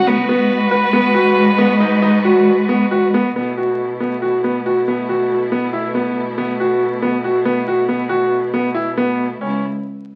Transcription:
Already playing: C#2 C#3 A3 D#4 F#4
0.07 B3 B4
0.28 G#2 G#3 B3 B4
0.71 B4
0.93 B3
1.14 F#4
1.58 B3
1.80 D#4
2.02 D#4
2.25 F#4
2.69 B3
2.91 F#4
3.14 B3
3.36 B2 A3 B3 E4
3.57 F#4
4.00 B3
4.22 F#4
4.44 B3
4.66 F#4
4.88 B3
5.09 F#4
5.52 B3
5.73 E4
5.95 B3
6.38 B3
6.60 F#4
7.02 B3
7.24 F#4
7.45 B3
7.68 F#4
7.89 B3
8.09 F#4
8.54 B3
8.74 E4
8.97 B3
9.41 C#2 C#3 B3 C#4 E4

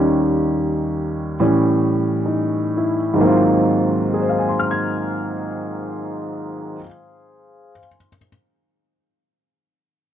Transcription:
Already playing: D#2 D#3 G3 C#4
1.40 A2 E3 G3 C#4
2.26 D#4
2.77 E4
3.14 G#2 D#3
3.18 F#3 A#3
3.23 C4 F4
4.14 G#4
4.21 C5
4.29 F5
4.39 G#5
4.49 C6
4.59 F6
4.71 G#6

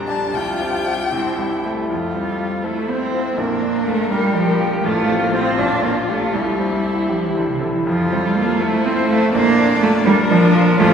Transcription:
Already playing: A#1 G3 D4 G4
0.07 D4 G4 A5
0.33 C2 F4 G5
0.60 C4 F4 G4
0.86 C4 F4 G4
1.12 C2 C4 E4
1.38 G3 C4 E4 G4
1.64 A3 C4 E4 G4
1.89 F2 F3 F4 A4
2.13 G3 C4
2.40 F4
2.64 A3 E4 A4 C5
2.89 C4 C5
3.14 F4
3.37 A#1 A#3 D4 A#4
3.62 D4
3.87 A3 F4
4.10 G3 G4 A#4
4.35 F3 D5
4.59 F4
4.83 A1 A3 F4
5.08 C4
5.22 A#3
5.33 C4 F4 C5
5.57 A#1 D4 F4
5.83 A#3 D4
6.08 A3 F4 G4
6.33 C2 G3 E4 G4
6.59 C4
6.85 E4
7.09 F3 G4
7.23 E3
7.35 D3 C5
7.49 C3
7.60 D3 E4
7.74 E3
7.87 F2 F3 F4 A4
8.11 G3 C4
8.37 A#3 F4
8.60 A3 E4 A4 C5
8.85 C4 C5
9.09 A3 F4
9.33 A#1 A#3 D4 D5
9.59 D4
9.82 A3 F4
10.06 G3 D4 A#4
10.29 F3 D5
10.55 F4
10.79 A1 A3 F4 C5

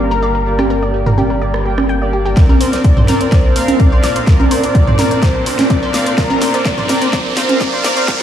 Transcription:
Already playing: G1 D3 G3 A#3 G4 A#4 F5
0.11 A#4
0.23 D5
0.35 A#4, closed hi-hat
0.46 A#3 G4 D5, closed hi-hat
0.59 G4, cross-stick, high conga
0.70 A#4
0.83 D5, closed hi-hat
0.94 closed hi-hat
1.06 A#4, mid tom
1.18 A#3 G4 D5, high conga
1.30 A#4, closed hi-hat
1.42 D5, closed hi-hat
1.54 cross-stick
1.65 A#3 G4 G5
1.78 D5, cross-stick, closed hi-hat, high conga
1.89 G5, closed hi-hat
2.02 A#3 G4 D5
2.13 G4
2.25 G4, closed hi-hat
2.37 A#2 A#3 C4 D4 A#4 D5, kick, snare, closed hi-hat, riser
2.49 A#4, high conga
2.61 C5, open hi-hat
2.73 C5 D5, snare, closed hi-hat
2.84 D5, kick, closed hi-hat
2.97 C5, mid tom
3.08 C4 A#4 D5, snare, open hi-hat, high conga
3.21 C5, closed hi-hat
3.32 C5 D5, kick, snare, closed hi-hat
3.56 C4 A#4 C5 F5, open hi-hat
3.68 closed hi-hat, high conga
3.80 D5, kick, closed hi-hat
3.92 C5
4.04 D5, snare, open hi-hat
4.16 C5, closed hi-hat
4.27 C4 A#4 D5, kick, snare, closed hi-hat
4.40 A#4, high conga
4.51 C5, open hi-hat
4.64 C5 D5, closed hi-hat
4.75 D5, kick, closed hi-hat
4.87 C5, mid tom
4.99 C4 A#4 D5, snare, open hi-hat, high conga
5.11 C5, closed hi-hat
5.23 C5 D5, kick, snare, closed hi-hat
5.46 C5, open hi-hat
5.59 snare, closed hi-hat, high conga
5.70 D5, kick, closed hi-hat
5.83 C5
5.94 C4 A#4 D5 F5, snare, open hi-hat
6.06 C5, closed hi-hat
6.18 C4 A#4 D5, kick, snare, closed hi-hat
6.30 A#4, high conga
6.42 C5, snare, open hi-hat
6.54 C5 D5, closed hi-hat
6.65 D5, kick, snare, closed hi-hat
6.78 C5, mid tom
6.89 C4 A#4 D5, snare, open hi-hat, high conga
7.02 C5, closed hi-hat
7.13 C5 D5, kick, snare, closed hi-hat
7.37 C4 A#4 C5 F5, snare, open hi-hat
7.49 closed hi-hat, high conga
7.61 D5, kick, snare, closed hi-hat
7.73 C5
7.84 D5, snare, open hi-hat
7.97 C5, closed hi-hat
8.08 C4 A#4 D5, kick, snare, closed hi-hat

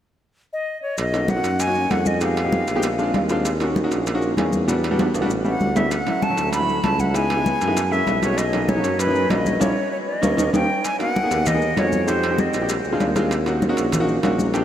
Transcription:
0.53 D#5
0.82 C#5
0.98 B1 D#5, high conga, high timbale, maracas
1.13 A#3 C#4 D#4 F#4, high conga, high timbale, maracas
1.28 F#5, high conga, low timbale, maracas
1.36 A#3 C#4 D#4 F#4
1.44 F#2, high conga, high timbale, maracas
1.60 G#5, high conga, high timbale, maracas
1.67 A#3 C#4 D#4 F#4
1.75 high conga, maracas
1.90 F2 A#3 C#4 D#4 G#4 F#5, high conga, high timbale, low timbale, maracas
2.06 D#5, high conga, maracas
2.21 G#3 B3 D#4 G4 F5, high conga, high timbale, maracas
2.37 high conga, high timbale, maracas
2.45 G#3 B3 D#4 G4
2.52 high conga, low timbale, maracas
2.67 A#1, high conga, high timbale, maracas
2.75 G#3 B3 D#4 G4
2.83 high conga, high timbale, maracas
2.99 G#3 C4 D4 F4, high conga, maracas
3.14 D#2 F5, high conga, high timbale, low timbale, maracas
3.29 G#3 C4 D4 F4 C5, high timbale, maracas
3.45 high conga, high timbale, maracas
3.60 A#3 C#4 D#4 F#4, high conga, high timbale, maracas
3.76 high conga, low timbale, maracas
3.83 A#3 C#4 D#4 F#4
3.91 A#1, high conga, high timbale, maracas
4.07 high conga, high timbale, maracas
4.14 A#3 C#4 D#4 F#4
4.22 high conga, maracas
4.37 E2 A#3 C#4 D#4 G#4, high conga, high timbale, low timbale, maracas
4.53 high conga, maracas
4.68 G3 B3 D4 F#4, high conga, high timbale, maracas
4.84 high conga, high timbale, maracas
4.91 G3 B3 D4 F#4
4.99 high conga, high timbale, maracas
5.14 A1, high conga, high timbale, maracas
5.21 G3 B3 D4 F#4
5.30 high conga, maracas
5.44 G3 B3 C#4 E4 F#5, high conga, maracas
5.60 D2, high conga, maracas
5.76 G3 B3 C#4 E4 E5, high conga, low timbale, maracas
5.91 F#5, high conga, high timbale, maracas
6.07 F#3 A3 C#4 E4, high conga, high timbale, maracas
6.22 A5, high conga, low timbale, maracas
6.30 F#3 A3 C#4 E4
6.37 D2, high conga, high timbale, maracas
6.53 B5, high conga, high timbale, maracas
6.60 F#3 A3 C#4 E4
6.69 high conga, maracas
6.83 C#2 F#3 A3 C#4 E4 A5, high conga, high timbale, low timbale, maracas
6.99 F#5, high conga, maracas
7.14 G#3 B3 D#4 E4 G#5, high timbale, maracas
7.30 high conga, high timbale, maracas
7.37 G#3 B3 D#4 E4
7.46 high conga, low timbale, maracas
7.61 F#2, high conga, high timbale, maracas
7.67 G#3 B3 D#4 E4
7.77 high conga, high timbale, maracas
7.91 G#3 A#3 C#4 E4 E5, high conga, maracas
8.07 B1, high conga, high timbale, low timbale, maracas
8.22 G#3 A#3 C#4 F#4 C#5, high conga, high timbale, maracas
8.37 D#5, high conga, high timbale, maracas
8.53 F#3 A#3 C#4 D#4, high conga, high timbale, maracas
8.69 C#5, high conga, low timbale, maracas
8.76 F#3 A#3 C#4 D#4
8.84 F#2, high conga, high timbale, maracas
8.99 B4, high conga, high timbale, maracas
9.07 F#3 A#3 C#4 D#4
9.15 high conga, maracas
9.30 A#1 F#3 A#3 C#4 F#4 D#5, high conga, high timbale, low timbale, maracas
9.46 high conga, maracas
9.60 A#1 A#3 C#4 E4 C#5, high conga, high timbale, maracas
9.92 C#5
10.07 D#5
10.22 D#2 A#3 C#4 D#4, high conga, high timbale, maracas
10.37 D#2 A#3 C#4 D#4, high conga, high timbale, maracas
10.53 D#2 A#3 C#4 D#4 G5, high conga, high timbale, maracas
10.85 G#5, high conga, high timbale, maracas
10.99 A#3 B3 D#4 F#4 F#5, high conga, high timbale, maracas
11.15 high conga, low timbale, maracas
11.23 A#3 B3 D#4 G#4
11.31 D#2, high conga, high timbale, maracas
11.46 D#5, high conga, low conga, high timbale, maracas
11.54 A#3 B3 D#4 G#4
11.61 high conga, maracas
11.76 F2 A#3 B3 D#4 F#4 C#5, high conga, high timbale, low timbale, maracas
11.92 high conga, maracas
12.07 G#3 C4 D#4 G4 C5, high conga, high timbale, maracas
12.23 high conga, high timbale, maracas
12.30 G#3 C4 D#4 G4
12.38 D#5, high conga, low timbale, maracas
12.53 A#1, high conga, high timbale, maracas
12.61 G#3 C4 D#4 G4
12.69 high conga, high timbale, maracas
12.85 D2, high conga, maracas
12.92 G#3 C4 D4 F4
13.00 D#2, high conga, high timbale, low timbale, maracas
13.16 G#3 C4 D4 F4, high conga, high timbale, maracas
13.31 high conga, high timbale, maracas
13.46 A#3 C#4 D#4 F#4, high conga, high timbale, maracas
13.62 high conga, low timbale, maracas
13.69 A#3 C#4 D#4 F#4
13.77 A#1, high conga, high timbale, maracas
13.92 high conga, low conga, high timbale, maracas
14.00 A#3 C#4 D#4 F#4
14.08 high conga, maracas
14.23 A#1 A#3 C#4 D#4 F#4, high conga, high timbale, low timbale, maracas
14.39 high conga, maracas
14.54 G#3 C4 D4 G4, high conga, high timbale, maracas

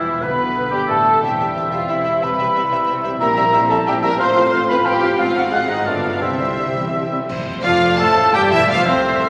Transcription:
Already playing: E1 E2 C3 E3 G3 C4 E4 G4 E5 G5
0.05 E4
0.14 C4
0.21 B1 B2 D3 B3 B4 B5
0.30 D4
0.39 G3
0.48 F4
0.56 G4
0.63 F4
0.71 G1 G2 G3 G4 F5 G5
0.87 A1 A2 A3 A4 F5 A5
0.98 G4
1.06 F4
1.14 D4
1.21 E1 E2 E3 G3 C4 E4 G4 E5 G5
1.31 C4
1.39 C4 E4 G4 E5
1.47 G4
1.55 E1 E2 C4 G4 C5 E5
1.64 E5
1.71 C4 F4 G4 E5 F5 G5
1.88 E1 E2 C4 E4 G4 E5 G5
1.97 C5
2.05 C4 G4 E5
2.14 C4
2.21 C2 C3 C4 G4 B4 E5 B5
2.31 G3
2.38 C4 G4 E5
2.47 E4
2.55 C2 C3 C4 G4 E5
2.64 C5
2.72 C4 G4 E5
2.81 G5
2.86 C2 C3 C4 G4 E5
2.97 G4
3.03 C4 E4 G4 E5
3.14 G3
3.20 A#1 A#2 G3 C4 E4 G4 A#4 E5 A#5
3.29 A#3
3.36 G3 C4 G4 E5
3.45 E4
3.52 A#1 A#2 G3 C4 G4 E5
3.62 C5
3.69 G3 C4 G4 A4 E5 A5
3.78 G5
3.86 A#1 A#2 G3 C4 G4 E5 G5
3.95 G4
4.02 G3 C4 E4 G4 A#4 E5 A#5
4.11 A#3
4.19 A1 A2 F3 C4 F4 C5 F5 C6
4.28 A3
4.35 F3 C4 F4 F5
4.45 F4
4.51 A1 A2 F3 C4 F4 F5
4.62 C5
4.68 F3 C4 F4 B4 F5 B5
4.77 C5
4.85 A1 A2 F3 C4 F4 G4 F5 G5
4.94 F4
5.01 F3 C4 F4 F5
5.10 A3
5.18 G#1 G#2 F3 C4 F4 F5
5.26 G#3
5.34 F3 C4 F#4 F5 F#5
5.42 F4
5.51 G#2 G#3 C4 F4 F#4 G#4 F5 F#5
5.59 G#3
5.67 G#3 C4 D#4 D#5 F#5
5.76 F#4
5.84 G1 G2 A3 B3 D4 F4 A4 D5 F5
5.93 D3
6.01 A3 B3 F5
6.20 C2 C3 G3 C4 E4 G4 C5 E5
6.30 G3
6.38 G3 C4 E5
6.48 E4
6.56 C3 G3 C4 G4 E5
6.65 C5
6.75 E3 G3 C4 E5
6.84 G5
6.92 D3 G3 C4 E5
7.01 G4
7.10 C3 G3 C4 E4 E5
7.19 G3
7.28 F2 C5, concert bass drum, crash
7.37 C3
7.47 C4
7.55 F4
7.63 F1 F2 F3 F4 A4 D5 F5
7.73 C5
7.82 F5
7.90 A5
7.98 A1 A2 A3 A4 C5 F5 A5
8.08 C5
8.25 F4
8.33 G1 G2 A2 G3 G4 D5 G5
8.43 A3
8.50 E1 E2 E3 C4 E4 E5
8.54 E4
8.60 F4
8.67 F1 F2 F3 F4 A4 C5 F5
8.78 C5
8.84 C2 C3 C4 C5
9.03 E5
9.13 C5
9.21 A4

